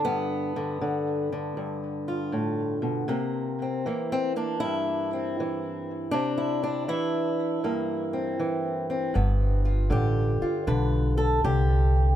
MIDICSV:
0, 0, Header, 1, 4, 480
1, 0, Start_track
1, 0, Tempo, 759494
1, 28, Time_signature, 4, 2, 24, 8
1, 7683, End_track
2, 0, Start_track
2, 0, Title_t, "Steel-string acoustic guitar"
2, 0, Program_c, 0, 25
2, 0, Note_on_c, 0, 50, 61
2, 0, Note_on_c, 0, 65, 85
2, 30, Note_on_c, 0, 59, 92
2, 36, Note_on_c, 0, 43, 70
2, 348, Note_off_c, 0, 50, 0
2, 348, Note_off_c, 0, 65, 0
2, 356, Note_on_c, 0, 50, 47
2, 507, Note_off_c, 0, 50, 0
2, 515, Note_on_c, 0, 50, 61
2, 827, Note_off_c, 0, 50, 0
2, 837, Note_on_c, 0, 50, 48
2, 985, Note_off_c, 0, 43, 0
2, 992, Note_on_c, 0, 43, 59
2, 1314, Note_on_c, 0, 65, 47
2, 1468, Note_on_c, 0, 45, 57
2, 1470, Note_off_c, 0, 59, 0
2, 1780, Note_off_c, 0, 45, 0
2, 1782, Note_on_c, 0, 47, 59
2, 1931, Note_off_c, 0, 43, 0
2, 1934, Note_off_c, 0, 65, 0
2, 1944, Note_off_c, 0, 47, 0
2, 1946, Note_on_c, 0, 48, 78
2, 1952, Note_on_c, 0, 58, 52
2, 1956, Note_off_c, 0, 50, 0
2, 2288, Note_on_c, 0, 60, 43
2, 2428, Note_off_c, 0, 48, 0
2, 2438, Note_on_c, 0, 52, 62
2, 2442, Note_off_c, 0, 58, 0
2, 2444, Note_on_c, 0, 58, 46
2, 2603, Note_off_c, 0, 60, 0
2, 2605, Note_on_c, 0, 60, 83
2, 2753, Note_off_c, 0, 58, 0
2, 2756, Note_off_c, 0, 60, 0
2, 2756, Note_on_c, 0, 58, 47
2, 2759, Note_on_c, 0, 62, 78
2, 2908, Note_on_c, 0, 64, 92
2, 2927, Note_on_c, 0, 43, 60
2, 3229, Note_off_c, 0, 62, 0
2, 3243, Note_on_c, 0, 60, 49
2, 3393, Note_off_c, 0, 52, 0
2, 3413, Note_on_c, 0, 52, 62
2, 3855, Note_off_c, 0, 58, 0
2, 3858, Note_off_c, 0, 43, 0
2, 3858, Note_off_c, 0, 60, 0
2, 3861, Note_off_c, 0, 52, 0
2, 3864, Note_on_c, 0, 62, 90
2, 3877, Note_on_c, 0, 48, 78
2, 4022, Note_off_c, 0, 64, 0
2, 4029, Note_on_c, 0, 64, 71
2, 4186, Note_off_c, 0, 62, 0
2, 4193, Note_on_c, 0, 62, 76
2, 4345, Note_off_c, 0, 64, 0
2, 4350, Note_on_c, 0, 52, 61
2, 4353, Note_off_c, 0, 48, 0
2, 4353, Note_on_c, 0, 64, 90
2, 4828, Note_on_c, 0, 43, 62
2, 4831, Note_off_c, 0, 62, 0
2, 4831, Note_on_c, 0, 58, 50
2, 5140, Note_on_c, 0, 60, 49
2, 5298, Note_off_c, 0, 52, 0
2, 5306, Note_on_c, 0, 52, 66
2, 5616, Note_off_c, 0, 60, 0
2, 5624, Note_on_c, 0, 60, 49
2, 5768, Note_off_c, 0, 52, 0
2, 5769, Note_off_c, 0, 43, 0
2, 5769, Note_off_c, 0, 60, 0
2, 5770, Note_off_c, 0, 58, 0
2, 5776, Note_on_c, 0, 43, 72
2, 5782, Note_on_c, 0, 59, 54
2, 5791, Note_off_c, 0, 64, 0
2, 6100, Note_on_c, 0, 65, 46
2, 6255, Note_on_c, 0, 50, 55
2, 6271, Note_on_c, 0, 67, 79
2, 6582, Note_off_c, 0, 65, 0
2, 6584, Note_on_c, 0, 65, 50
2, 6736, Note_off_c, 0, 50, 0
2, 6744, Note_on_c, 0, 50, 61
2, 6746, Note_off_c, 0, 67, 0
2, 6748, Note_on_c, 0, 71, 70
2, 7060, Note_off_c, 0, 71, 0
2, 7063, Note_on_c, 0, 69, 79
2, 7226, Note_off_c, 0, 50, 0
2, 7229, Note_off_c, 0, 69, 0
2, 7233, Note_on_c, 0, 50, 59
2, 7233, Note_on_c, 0, 67, 84
2, 7683, Note_off_c, 0, 43, 0
2, 7683, Note_off_c, 0, 50, 0
2, 7683, Note_off_c, 0, 59, 0
2, 7683, Note_off_c, 0, 65, 0
2, 7683, Note_off_c, 0, 67, 0
2, 7683, End_track
3, 0, Start_track
3, 0, Title_t, "Upright bass"
3, 0, Program_c, 1, 32
3, 5786, Note_on_c, 1, 31, 83
3, 6253, Note_off_c, 1, 31, 0
3, 6261, Note_on_c, 1, 33, 89
3, 6558, Note_off_c, 1, 33, 0
3, 6745, Note_on_c, 1, 35, 97
3, 7214, Note_off_c, 1, 35, 0
3, 7232, Note_on_c, 1, 36, 91
3, 7683, Note_off_c, 1, 36, 0
3, 7683, End_track
4, 0, Start_track
4, 0, Title_t, "Muted upright bass strokes"
4, 6579, Note_on_c, 9, 29, 39
4, 6643, Note_off_c, 9, 29, 0
4, 7683, End_track
0, 0, End_of_file